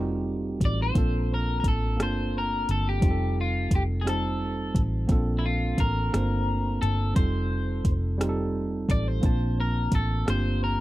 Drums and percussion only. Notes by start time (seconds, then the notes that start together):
0.61 kick, closed hi-hat
0.95 kick, closed hi-hat
1.64 kick, closed hi-hat
2.00 cross-stick, closed hi-hat
2.69 closed hi-hat
3.02 kick, closed hi-hat
3.71 kick, closed hi-hat
4.07 cross-stick, closed hi-hat
4.75 kick, closed hi-hat
5.09 kick, closed hi-hat
5.78 kick, closed hi-hat
6.14 cross-stick, closed hi-hat
6.83 closed hi-hat
7.16 kick, closed hi-hat
7.85 kick, closed hi-hat
8.21 cross-stick, closed hi-hat
8.89 kick, closed hi-hat
9.23 kick, closed hi-hat
9.92 kick, closed hi-hat
10.28 cross-stick, closed hi-hat